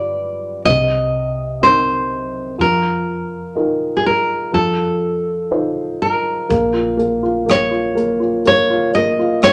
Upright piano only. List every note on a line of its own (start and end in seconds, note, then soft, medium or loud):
0.00 0.60 G3 medium
0.00 0.61 F4 soft
0.00 0.61 G4 soft
0.00 0.61 B4 soft
0.65 2.54 C3 soft
1.61 2.55 C4 soft
1.61 2.56 D#4 soft
1.61 2.56 A#4 soft
2.58 4.49 F3 medium
3.55 4.50 D#4 soft
3.55 4.51 F4 soft
3.55 4.51 A#4 soft
4.52 6.46 F3 soft
5.51 6.47 D#4 soft
5.51 6.47 F4 soft
5.51 6.48 C5 soft
6.49 6.96 A#3 medium
6.74 7.21 F4 soft
6.97 7.45 A#3 medium
7.23 7.69 F4 soft
7.46 7.94 A#3 soft
7.71 8.18 F4 soft
7.95 8.44 A#3 medium
8.20 8.69 F4 soft
8.46 8.93 A#3 medium
8.70 9.18 F4 medium
8.95 9.41 A#3 soft
9.19 9.53 F4 medium
9.43 9.53 A#3 soft